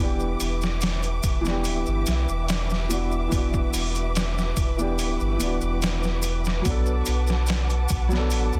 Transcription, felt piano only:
Already playing: E3
0.00 B3 D4
0.04 G4
1.41 E3 B3
1.47 D4 G4
2.88 E3 B3 D4
2.93 F#4
3.28 E3 B3
3.34 D4 F#4
4.77 E3 B3 D4
4.82 G4
5.36 E3 B3
5.42 D4 F#4
6.61 F#3 B3
6.68 D4 A4
8.08 F#3 B3
8.15 D4 A4

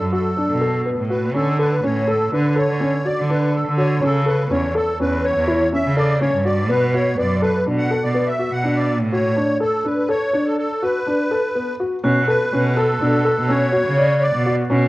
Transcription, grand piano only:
0.12 F#4
0.37 D4
0.61 A4
0.85 B3
1.10 F#4
1.34 C#4
1.59 A4
1.83 C#4
2.07 A4
2.32 D4
2.56 A4
2.80 C#4
3.05 F#4
3.29 D4
3.77 F#4
4.02 C#4
4.26 A4
4.50 C#4
4.75 A4
5.00 C#4
5.48 E4
5.72 C#4
5.97 A4
6.21 C#4
6.45 F#4
6.69 B3
6.94 F#4
7.18 B3
7.42 A4
7.66 D4
7.91 A4
8.15 B3
8.39 F#4
8.64 D4
9.12 F#4
9.36 D4
9.60 A4
9.84 D4
10.09 A4
10.33 D4
10.82 F#4
11.07 D4
11.31 A4
11.55 B3
11.80 F#4
12.04 C#4
12.28 A4
12.53 C#4
12.77 A4
13.01 D4
13.25 A4
13.49 C#4
13.72 F#4
13.98 D5
14.46 F#4
14.70 C#4

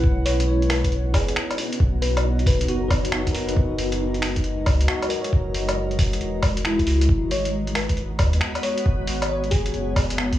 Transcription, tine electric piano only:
Already playing: B4
0.48 C#5
2.69 F#4
2.88 B4
3.02 C#5
3.14 F#4
3.33 A#4
3.47 B4
4.01 D#4
4.89 F#4
5.09 A#4
5.22 C#5
6.66 E4

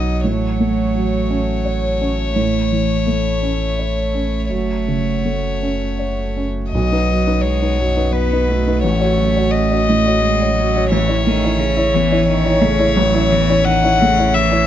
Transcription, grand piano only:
Already playing: B1 F#2 F#3 D#4 B4
0.24 A2
0.60 A3
0.95 F#3
1.30 C#4
1.65 C#5
2.01 C#4
2.36 A2
2.72 E3
3.07 A3
3.42 C#4
3.79 C#5
4.15 C#4
4.50 F#2
4.88 C#3
5.25 A3
5.62 C#4
5.99 C#5
6.36 C#4
6.75 B1
6.92 D#4 B4
7.11 F#3
7.27 D#4 B4
7.62 D#4 B4
7.80 F#2
7.96 D#4 B4
8.32 D#4 B4
8.52 F#3
8.67 D#4 B4
8.84 A1
9.00 F#4 C#5
9.18 F#3
9.36 F#4 C#5
9.72 F#4 C#5
9.89 A2
10.06 F#4 C#5
10.41 F#4 C#5
10.60 F#3
10.76 F#4 C#5
10.92 A1
11.09 E4 C#5
11.27 A3
11.45 E4 C#5
11.77 E4 C#5
11.94 E2
12.12 E4 C#5
12.45 E4 C#5
12.61 A3
12.79 E4 C#5
12.97 A1
13.14 E4 C#5
13.32 E2
13.49 E4 C#5
13.84 E4 C#5
14.02 A3
14.18 E4 C#5
14.52 E4 C#5

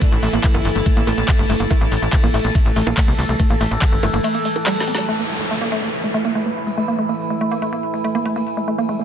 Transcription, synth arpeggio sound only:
0.12 A3
0.23 A3
0.33 A#3
0.44 A3
0.54 A#3
0.76 A3
0.86 A3
0.97 A#3
1.07 A3
1.18 A#3
1.39 A3
1.49 A3
1.60 A#3
1.71 A3
1.81 A#3
2.02 A3
2.13 A3
2.23 A#3
2.34 A3
2.45 A#3
2.66 A3
2.76 A3
2.87 A#3
2.97 A3
3.08 A#3
3.29 A3
3.40 A3
3.50 A#3
3.61 A3
3.71 A#3
3.92 A3
4.03 A3
4.14 A#3
4.24 A3
4.35 A#3
4.45 A3
4.56 A#4
4.66 G3
4.88 C4
4.98 G3
5.09 A3
5.19 A#3
5.40 A3
5.51 A3
5.61 A#3
5.72 A3
5.83 A#3
6.04 A3
6.14 A3
6.25 A#3
6.35 A3
6.46 A#3
6.67 A3
6.78 A3
6.88 A#3
6.99 A3
7.09 A#3
7.30 A3
7.41 A3
7.52 A#3
7.62 A3
7.73 A#3
7.94 A3
8.04 A3
8.15 A#3
8.26 A3
8.36 A#3
8.57 A3
8.68 A3
8.78 A#3
8.89 A3
9.00 A#3

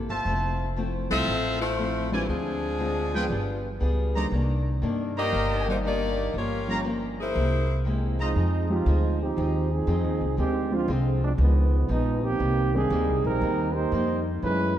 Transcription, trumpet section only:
0.09 F4 C5 E5 A5
2.12 F4 C5 D5 G#5
3.13 F4 G#4 B4 G5
4.15 D#4 C5 D5 A#5
5.17 D#4 A#4 C5 A#5
6.68 G4 C#5 F5 A#5
8.20 F4 C5 D#5 A#5

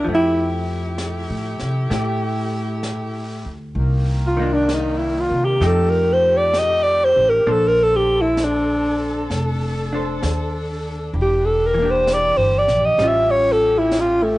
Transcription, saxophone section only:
Already playing: E4
0.07 A3 G4
3.76 D#3 A#3
5.61 D#3 A3 G4
7.44 D3 C4 A4
9.30 D4
11.13 E3 G4
12.99 F3 C#4

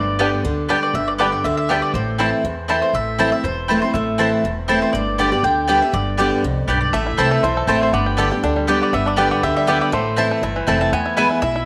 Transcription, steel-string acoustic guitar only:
Already playing: G2
0.19 D3 G3 B3 G4
0.45 D3
0.69 D3 G3 B3 G4
0.95 G2
1.20 D3 G3 B3 G4
1.45 D3
1.70 D3 G3 B3 G4
1.95 A2
2.19 E3 A3 C4 E4
2.45 E2
2.69 E3 A3 C4 E4
2.95 A2
3.19 E3 A3 C4 E4
3.32 C4 E4
3.45 E2
3.70 E3 A3 C4 E4
3.82 C4 E4
3.95 A2
4.19 E3 A3 C4 E4
4.45 E2
4.69 E3 A3 C4 E4
4.95 G2
5.19 D3 G3 B3 G4
5.32 B3 G4
5.44 D3
5.68 D3 G3 B3 G4
5.82 B3 G4
5.94 G2
6.18 D3 G3 B3 G4
6.44 F2
6.70 G2
6.94 A2
7.18 E3 A3 C4 E4
7.44 E2
7.68 E3 A3 C4 E4
7.94 G2
8.18 D3 G3 B3 G4
8.31 B3 G4
8.43 D3
8.68 D3 G3 B3 G4
8.94 G2
9.17 D3 G3 B3 G4
9.43 D3
9.67 D3 G3 B3 G4
9.92 A2
10.17 E3 A3 C4 E4
10.43 E2
10.67 E3 A3 C4 E4
10.93 E2
11.17 E3 G#3 B3 E4
11.42 B2

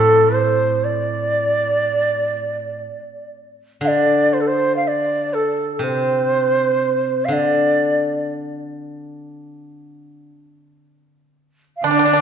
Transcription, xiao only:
Already playing: A4
0.34 C5
0.84 D5
3.84 D5 F5
4.33 C5
4.41 A4
4.47 C5
4.76 F5
4.84 D5 F5
5.34 A4
5.83 C5
7.25 F5
7.33 D5
11.77 F5
11.84 D5

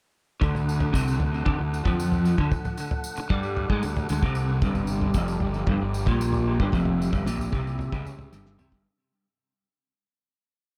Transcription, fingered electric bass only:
0.42 D2
0.94 C2
1.20 D2
1.46 D2
1.60 D2
1.85 F2
2.39 D2
3.18 muted fingered electric bass stroke
3.30 G2
3.70 G#2
3.84 D2
4.10 D2
4.22 C2
4.62 G1
5.14 F1
5.42 G1
5.67 G1
5.81 G1
6.07 A#1
6.60 G1
6.73 F1
7.13 G1
7.27 A#1
7.53 C2
7.93 C#2
8.33 G1
8.59 C2
8.72 G1

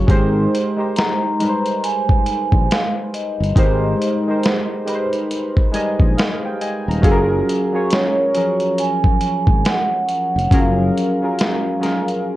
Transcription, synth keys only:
Already playing: C#4
0.07 G#3 D#4 G4 A#4 C5
0.76 G#3 D#4 G4 A#4 C5
1.39 G3 G#3 D#4 A#4 B4
1.49 C5
3.55 G#3 D#4 G4 A#4 C5
4.27 G#3 D#4 G4 A#4 C5
4.85 G#3 D#4 G4 A#4 B4
4.94 C5
5.72 G3 G#3 D#4 A#4 D#5 G#5
6.17 F5
6.45 G5
6.61 D#5 G#5
6.89 A#5
7.01 F#3 C#4 F4 G#4 A4
7.11 A#4
7.72 F#3 C#4 F4 G#4 C#5
8.34 F3 F#3 C#4 G#4 A#4
10.50 F#3 C#4 F4 G#4 A#4
11.21 F#3 C#4 F4 G#4 A#4
11.79 F#3 C#4 F4 G#4 A#4

